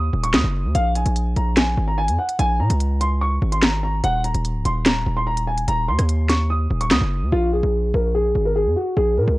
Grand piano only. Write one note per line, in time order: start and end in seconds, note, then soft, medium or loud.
0.00 0.22 D#6 medium
0.23 0.32 C#6 medium
0.34 0.72 D#6 medium
0.75 0.91 F5 loud
0.95 1.34 G#5 medium
1.36 1.53 A#5 medium
1.57 1.86 G#5 medium
1.88 1.96 A#5 medium
1.98 2.15 G#5 medium
2.19 2.35 F#5 medium
2.39 2.56 G#5 loud
2.60 2.98 A#5 medium
3.01 3.17 C6 medium
3.21 3.50 C#6 medium
3.52 3.60 C6 medium
3.63 3.79 A#5 medium
3.83 4.00 A#5 medium
4.04 4.20 F#5 loud
4.24 4.63 A#5 medium
4.65 4.82 C6 medium
4.86 5.15 A#5 medium
5.17 5.25 C6 medium
5.27 5.43 A#5 loud
5.47 5.64 G#5 medium
5.68 5.85 A#5 loud
5.88 6.27 C6 medium
6.29 6.46 C#6 medium
6.50 6.79 D#6 medium
6.81 6.89 C#6 medium
6.91 7.30 D#6 medium
7.32 7.49 F4 loud
7.53 7.92 G#4 medium
7.94 8.11 A#4 medium
8.15 8.43 G#4 medium
8.45 8.54 A#4 medium
8.56 8.72 G#4 medium
8.76 8.93 F#4 medium
8.97 9.13 G#4 loud
9.17 9.38 A#4 medium